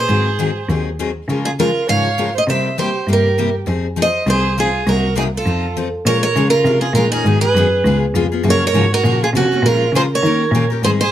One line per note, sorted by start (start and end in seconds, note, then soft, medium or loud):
0.00 0.81 G#4 medium
0.00 0.83 C5 medium
0.08 0.57 G#2 medium
0.08 0.28 D#3 medium
0.08 0.28 F#3 medium
0.08 0.28 C4 medium
0.08 0.28 D#4 medium
0.08 0.29 G#4 medium
0.39 0.49 D#3 medium
0.39 0.50 F#3 medium
0.39 0.50 C4 medium
0.39 0.50 D#4 medium
0.39 0.50 G#4 medium
0.68 1.16 D#2 medium
0.68 0.88 D#3 medium
0.68 0.88 F#3 medium
0.68 0.89 C4 medium
0.68 0.89 D#4 medium
0.68 0.89 G#4 medium
0.99 1.09 D#3 medium
0.99 1.10 F#3 medium
0.99 1.10 C4 medium
0.99 1.10 D#4 medium
0.99 1.10 G#4 medium
1.28 1.76 C#3 medium
1.28 1.48 C#3 medium
1.28 1.48 F3 medium
1.28 1.48 G#3 medium
1.28 1.48 C#4 medium
1.28 1.48 F4 medium
1.28 1.48 A#4 medium
1.45 1.52 F4 medium
1.45 1.50 G#4 medium
1.59 1.69 C#3 medium
1.59 1.69 F3 medium
1.59 1.69 G#3 medium
1.59 1.69 C#4 medium
1.59 1.70 F4 medium
1.59 1.87 F4 medium
1.59 1.87 A#4 medium
1.59 1.70 A#4 medium
1.88 2.36 G#2 medium
1.88 2.07 C#3 medium
1.88 2.07 F3 medium
1.88 2.08 G#3 medium
1.88 2.08 C#4 medium
1.88 2.08 F4 medium
1.88 2.08 A#4 medium
1.88 2.33 C#5 medium
1.88 2.32 F5 medium
2.18 2.28 C#3 medium
2.18 2.29 F3 medium
2.18 2.29 G#3 medium
2.18 2.29 C#4 medium
2.18 2.29 F4 medium
2.18 2.29 A#4 medium
2.35 2.47 C5 medium
2.35 2.43 D#5 medium
2.47 2.95 C3 medium
2.47 2.67 C3 medium
2.47 2.68 G3 medium
2.47 2.68 A#3 medium
2.47 2.68 E4 medium
2.47 2.68 G4 medium
2.47 2.77 C5 medium
2.47 2.79 E5 medium
2.78 2.88 C3 medium
2.78 2.88 G3 medium
2.78 2.88 A#3 medium
2.78 2.89 E4 medium
2.78 2.89 G4 medium
2.78 3.07 G4 medium
2.78 3.06 C5 medium
3.07 3.55 G2 medium
3.07 3.27 C3 medium
3.07 3.27 G3 medium
3.07 3.27 A#3 medium
3.07 3.27 E4 medium
3.07 3.52 G4 medium
3.07 3.28 G4 medium
3.13 3.54 A#4 medium
3.38 3.48 C3 medium
3.38 3.48 G3 medium
3.38 3.49 A#3 medium
3.38 3.49 E4 medium
3.38 3.49 G4 medium
3.66 4.15 F2 medium
3.66 3.86 F3 medium
3.66 3.86 C4 medium
3.66 3.86 D#4 medium
3.66 3.86 G#4 medium
3.96 4.07 F3 medium
3.96 4.08 C4 medium
3.96 4.08 D#4 medium
3.96 4.08 G#4 medium
4.01 4.27 C5 medium
4.01 4.28 D#5 medium
4.26 4.74 C2 medium
4.26 4.46 F3 medium
4.26 4.46 C4 medium
4.26 4.46 D#4 medium
4.26 4.47 G#4 medium
4.30 4.57 G#4 medium
4.30 4.59 C5 medium
4.58 4.68 F3 medium
4.58 4.68 C4 medium
4.58 4.68 D#4 medium
4.58 4.86 F4 medium
4.58 4.68 G#4 medium
4.58 4.89 G#4 medium
4.87 5.34 C2 medium
4.87 5.06 C3 medium
4.87 5.06 F#3 medium
4.87 5.06 A#3 medium
4.87 5.06 D#4 medium
4.87 5.15 F#4 medium
4.87 5.06 A#4 medium
4.87 5.17 A#4 medium
5.16 5.26 C3 medium
5.16 5.27 F#3 medium
5.16 5.27 A#3 medium
5.16 5.27 D#4 medium
5.16 5.26 D#4 medium
5.16 5.23 G#4 medium
5.16 5.27 A#4 medium
5.35 5.74 F4 medium
5.35 5.75 A4 medium
5.45 5.93 F2 medium
5.45 5.65 F3 medium
5.45 5.66 C4 medium
5.45 5.66 D#4 medium
5.45 5.66 A4 medium
5.77 5.87 F3 medium
5.77 5.87 C4 medium
5.77 5.87 D#4 medium
5.77 5.87 A4 medium
6.05 6.35 A#2 medium
6.05 6.25 F3 medium
6.05 6.25 G#3 medium
6.05 6.25 C#4 medium
6.05 6.26 F4 medium
6.05 6.22 A#4 medium
6.05 6.26 A#4 medium
6.05 6.22 C#5 loud
6.23 6.50 A#4 medium
6.23 6.50 C#5 medium
6.36 6.51 C#3 medium
6.36 6.46 F3 medium
6.36 6.47 G#3 medium
6.36 6.47 C#4 medium
6.36 6.47 F4 medium
6.36 6.47 A#4 medium
6.50 6.64 C#3 soft
6.50 6.79 F4 medium
6.50 6.79 A#4 medium
6.65 6.93 C3 medium
6.65 6.85 F3 medium
6.65 6.85 G#3 medium
6.65 6.85 C#4 medium
6.65 6.85 F4 medium
6.65 6.85 A#4 medium
6.81 6.92 F4 medium
6.81 6.94 G#4 medium
6.93 7.23 A#2 medium
6.93 7.06 F3 medium
6.93 7.06 G#3 medium
6.93 7.06 C#4 medium
6.93 7.09 F4 medium
6.93 7.06 F4 medium
6.93 7.11 A#4 medium
6.97 7.07 A#4 medium
7.10 7.38 D#4 medium
7.10 7.40 G#4 medium
7.10 7.25 A#4 medium
7.15 7.26 C#4 soft
7.15 7.26 F4 medium
7.24 7.54 G#2 medium
7.24 7.45 D#3 medium
7.24 7.45 F#3 medium
7.24 7.45 B3 medium
7.24 7.45 D#4 medium
7.24 7.45 G#4 medium
7.39 7.96 G#4 medium
7.39 7.97 B4 medium
7.54 7.83 F#2 medium
7.54 7.66 D#3 medium
7.54 7.66 F#3 medium
7.54 7.66 B3 medium
7.54 7.67 D#4 medium
7.54 7.67 G#4 medium
7.84 8.13 C#2 medium
7.84 8.04 C#3 medium
7.84 8.05 G#3 medium
7.84 8.05 B3 medium
7.84 8.05 F4 medium
7.84 8.05 G#4 medium
8.14 8.43 F2 medium
8.14 8.25 C#3 medium
8.14 8.25 G#3 medium
8.14 8.26 B3 medium
8.14 8.25 F4 medium
8.14 8.26 G#4 medium
8.32 8.44 B3 medium
8.32 8.44 F4 medium
8.32 8.44 G#4 medium
8.43 8.73 F#2 medium
8.43 8.63 C#3 medium
8.43 8.63 F3 medium
8.43 8.63 A#3 medium
8.43 8.63 C#4 medium
8.43 8.63 F#4 medium
8.49 8.63 A#4 medium
8.49 8.63 C#5 loud
8.65 8.91 A#4 medium
8.65 8.93 C#5 medium
8.74 9.03 G#2 medium
8.74 8.85 C#3 medium
8.74 8.85 F3 medium
8.74 8.85 A#3 medium
8.74 8.85 C#4 medium
8.74 8.86 F#4 medium
8.93 9.20 F#4 medium
8.93 9.20 A#4 medium
9.04 9.33 A#2 medium
9.04 9.23 C#3 medium
9.04 9.24 F3 medium
9.04 9.24 A#3 medium
9.04 9.24 C#4 medium
9.04 9.24 F#4 medium
9.23 9.29 F4 medium
9.23 9.29 G#4 medium
9.33 9.62 C3 medium
9.33 9.45 C#3 medium
9.33 9.45 F3 medium
9.33 9.45 A#3 medium
9.33 9.45 C#4 medium
9.33 9.63 C#4 medium
9.33 9.46 F#4 medium
9.33 9.66 F#4 medium
9.52 9.65 A#3 soft
9.52 9.64 C#4 soft
9.52 9.64 F#4 medium
9.62 9.91 A#2 medium
9.62 9.84 F3 medium
9.62 9.84 G#3 medium
9.62 9.92 F4 medium
9.62 9.93 A#4 medium
9.66 9.84 C#4 medium
9.66 9.84 F4 medium
9.66 9.84 A#4 medium
9.92 10.22 C#3 medium
9.92 10.05 F3 medium
9.92 10.05 G#3 medium
9.92 10.05 C#4 medium
9.92 10.02 G#4 medium
9.96 10.05 F4 medium
9.96 10.05 A#4 medium
9.96 10.01 C5 medium
10.11 10.66 A#4 medium
10.15 10.68 C#5 medium
10.23 10.51 D#3 medium
10.23 10.43 D#3 medium
10.23 10.43 A#3 medium
10.23 10.44 C#4 medium
10.23 10.44 G4 medium
10.27 10.44 A#4 medium
10.51 10.81 A#2 medium
10.51 10.64 D#3 medium
10.51 10.64 A#3 medium
10.51 10.64 C#4 medium
10.51 10.64 G4 medium
10.56 10.65 A#4 medium
10.70 10.83 C#4 soft
10.70 10.83 G4 soft
10.70 10.82 A#4 medium
10.82 11.11 G#2 medium
10.82 11.02 D#3 medium
10.82 11.02 G3 medium
10.82 11.02 C4 medium
10.82 11.02 D#4 medium
10.82 11.03 G#4 medium
10.82 10.92 G#4 medium
10.82 10.89 C5 medium
11.01 11.12 G#4 medium
11.01 11.12 C5 medium